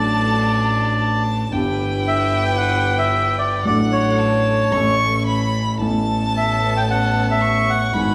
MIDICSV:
0, 0, Header, 1, 6, 480
1, 0, Start_track
1, 0, Tempo, 534283
1, 1368, Time_signature, 4, 2, 24, 8
1, 7319, End_track
2, 0, Start_track
2, 0, Title_t, "Violin"
2, 0, Program_c, 0, 40
2, 0, Note_on_c, 0, 81, 94
2, 888, Note_off_c, 0, 81, 0
2, 894, Note_on_c, 0, 81, 91
2, 1369, Note_on_c, 0, 79, 93
2, 1382, Note_off_c, 0, 81, 0
2, 3277, Note_off_c, 0, 79, 0
2, 3283, Note_on_c, 0, 78, 91
2, 3760, Note_on_c, 0, 81, 87
2, 3773, Note_off_c, 0, 78, 0
2, 4242, Note_on_c, 0, 85, 99
2, 4255, Note_off_c, 0, 81, 0
2, 4731, Note_off_c, 0, 85, 0
2, 4735, Note_on_c, 0, 83, 88
2, 5186, Note_off_c, 0, 83, 0
2, 5214, Note_on_c, 0, 81, 97
2, 6660, Note_on_c, 0, 85, 96
2, 6674, Note_off_c, 0, 81, 0
2, 7138, Note_on_c, 0, 83, 100
2, 7151, Note_off_c, 0, 85, 0
2, 7319, Note_off_c, 0, 83, 0
2, 7319, End_track
3, 0, Start_track
3, 0, Title_t, "Bandoneon"
3, 0, Program_c, 1, 23
3, 0, Note_on_c, 1, 74, 88
3, 1104, Note_off_c, 1, 74, 0
3, 1866, Note_on_c, 1, 76, 85
3, 2190, Note_off_c, 1, 76, 0
3, 2203, Note_on_c, 1, 79, 84
3, 2257, Note_off_c, 1, 79, 0
3, 2313, Note_on_c, 1, 78, 95
3, 2651, Note_off_c, 1, 78, 0
3, 2681, Note_on_c, 1, 76, 85
3, 3016, Note_off_c, 1, 76, 0
3, 3041, Note_on_c, 1, 74, 82
3, 3279, Note_off_c, 1, 74, 0
3, 3293, Note_on_c, 1, 74, 92
3, 3398, Note_off_c, 1, 74, 0
3, 3524, Note_on_c, 1, 73, 82
3, 4452, Note_off_c, 1, 73, 0
3, 5722, Note_on_c, 1, 76, 85
3, 6047, Note_off_c, 1, 76, 0
3, 6080, Note_on_c, 1, 79, 92
3, 6130, Note_off_c, 1, 79, 0
3, 6201, Note_on_c, 1, 78, 93
3, 6527, Note_off_c, 1, 78, 0
3, 6569, Note_on_c, 1, 76, 86
3, 6917, Note_on_c, 1, 78, 86
3, 6923, Note_off_c, 1, 76, 0
3, 7319, Note_off_c, 1, 78, 0
3, 7319, End_track
4, 0, Start_track
4, 0, Title_t, "String section"
4, 0, Program_c, 2, 48
4, 0, Note_on_c, 2, 62, 72
4, 0, Note_on_c, 2, 66, 66
4, 0, Note_on_c, 2, 69, 79
4, 1272, Note_off_c, 2, 62, 0
4, 1274, Note_off_c, 2, 66, 0
4, 1274, Note_off_c, 2, 69, 0
4, 1370, Note_on_c, 2, 64, 75
4, 1371, Note_on_c, 2, 67, 65
4, 1372, Note_on_c, 2, 71, 78
4, 3186, Note_off_c, 2, 64, 0
4, 3187, Note_off_c, 2, 67, 0
4, 3188, Note_off_c, 2, 71, 0
4, 3278, Note_on_c, 2, 62, 66
4, 3280, Note_on_c, 2, 66, 58
4, 3281, Note_on_c, 2, 69, 75
4, 4193, Note_off_c, 2, 62, 0
4, 4194, Note_off_c, 2, 66, 0
4, 4194, Note_off_c, 2, 69, 0
4, 4240, Note_on_c, 2, 61, 65
4, 4243, Note_on_c, 2, 64, 61
4, 4243, Note_on_c, 2, 69, 72
4, 5168, Note_off_c, 2, 61, 0
4, 5170, Note_off_c, 2, 64, 0
4, 5170, Note_off_c, 2, 69, 0
4, 5216, Note_on_c, 2, 59, 67
4, 5216, Note_on_c, 2, 61, 64
4, 5218, Note_on_c, 2, 69, 81
4, 7041, Note_off_c, 2, 59, 0
4, 7041, Note_off_c, 2, 61, 0
4, 7042, Note_off_c, 2, 69, 0
4, 7133, Note_on_c, 2, 59, 69
4, 7134, Note_on_c, 2, 64, 64
4, 7136, Note_on_c, 2, 68, 81
4, 7319, Note_off_c, 2, 59, 0
4, 7319, Note_off_c, 2, 64, 0
4, 7319, Note_off_c, 2, 68, 0
4, 7319, End_track
5, 0, Start_track
5, 0, Title_t, "Grand piano"
5, 0, Program_c, 3, 0
5, 0, Note_on_c, 3, 33, 58
5, 0, Note_on_c, 3, 45, 61
5, 0, Note_on_c, 3, 54, 51
5, 0, Note_on_c, 3, 57, 50
5, 0, Note_on_c, 3, 62, 46
5, 0, Note_on_c, 3, 69, 62
5, 1261, Note_off_c, 3, 54, 0
5, 1265, Note_off_c, 3, 57, 0
5, 1268, Note_off_c, 3, 33, 0
5, 1269, Note_off_c, 3, 45, 0
5, 1273, Note_off_c, 3, 62, 0
5, 1276, Note_off_c, 3, 69, 0
5, 1349, Note_on_c, 3, 52, 55
5, 1357, Note_on_c, 3, 59, 50
5, 1365, Note_on_c, 3, 31, 61
5, 1367, Note_on_c, 3, 43, 65
5, 1370, Note_on_c, 3, 62, 49
5, 1384, Note_on_c, 3, 67, 64
5, 3176, Note_off_c, 3, 52, 0
5, 3180, Note_off_c, 3, 59, 0
5, 3184, Note_off_c, 3, 31, 0
5, 3185, Note_off_c, 3, 43, 0
5, 3187, Note_off_c, 3, 62, 0
5, 3193, Note_off_c, 3, 67, 0
5, 3267, Note_on_c, 3, 54, 50
5, 3278, Note_on_c, 3, 57, 50
5, 3281, Note_on_c, 3, 33, 61
5, 3284, Note_on_c, 3, 45, 63
5, 3290, Note_on_c, 3, 62, 49
5, 3299, Note_on_c, 3, 69, 61
5, 4187, Note_off_c, 3, 54, 0
5, 4193, Note_off_c, 3, 57, 0
5, 4194, Note_off_c, 3, 33, 0
5, 4196, Note_off_c, 3, 45, 0
5, 4199, Note_off_c, 3, 62, 0
5, 4203, Note_off_c, 3, 69, 0
5, 4227, Note_on_c, 3, 52, 54
5, 4235, Note_on_c, 3, 57, 51
5, 4240, Note_on_c, 3, 33, 63
5, 4244, Note_on_c, 3, 45, 64
5, 4250, Note_on_c, 3, 61, 52
5, 4261, Note_on_c, 3, 69, 63
5, 5162, Note_off_c, 3, 52, 0
5, 5166, Note_off_c, 3, 57, 0
5, 5168, Note_off_c, 3, 33, 0
5, 5171, Note_off_c, 3, 45, 0
5, 5173, Note_off_c, 3, 61, 0
5, 5179, Note_off_c, 3, 69, 0
5, 5202, Note_on_c, 3, 52, 54
5, 5214, Note_on_c, 3, 59, 45
5, 5219, Note_on_c, 3, 33, 59
5, 5220, Note_on_c, 3, 45, 61
5, 5225, Note_on_c, 3, 61, 48
5, 5237, Note_on_c, 3, 69, 56
5, 7034, Note_off_c, 3, 52, 0
5, 7040, Note_off_c, 3, 59, 0
5, 7043, Note_off_c, 3, 33, 0
5, 7043, Note_off_c, 3, 45, 0
5, 7046, Note_off_c, 3, 61, 0
5, 7052, Note_off_c, 3, 69, 0
5, 7121, Note_on_c, 3, 52, 51
5, 7136, Note_on_c, 3, 56, 45
5, 7139, Note_on_c, 3, 44, 63
5, 7140, Note_on_c, 3, 32, 62
5, 7147, Note_on_c, 3, 59, 50
5, 7159, Note_on_c, 3, 68, 59
5, 7319, Note_off_c, 3, 32, 0
5, 7319, Note_off_c, 3, 44, 0
5, 7319, Note_off_c, 3, 52, 0
5, 7319, Note_off_c, 3, 56, 0
5, 7319, Note_off_c, 3, 59, 0
5, 7319, Note_off_c, 3, 68, 0
5, 7319, End_track
6, 0, Start_track
6, 0, Title_t, "Double bass"
6, 0, Program_c, 4, 43
6, 0, Note_on_c, 4, 33, 74
6, 1273, Note_off_c, 4, 33, 0
6, 1372, Note_on_c, 4, 31, 74
6, 3187, Note_off_c, 4, 31, 0
6, 3286, Note_on_c, 4, 33, 69
6, 4197, Note_off_c, 4, 33, 0
6, 4241, Note_on_c, 4, 33, 72
6, 5169, Note_off_c, 4, 33, 0
6, 5213, Note_on_c, 4, 33, 78
6, 7040, Note_off_c, 4, 33, 0
6, 7143, Note_on_c, 4, 32, 75
6, 7319, Note_off_c, 4, 32, 0
6, 7319, End_track
0, 0, End_of_file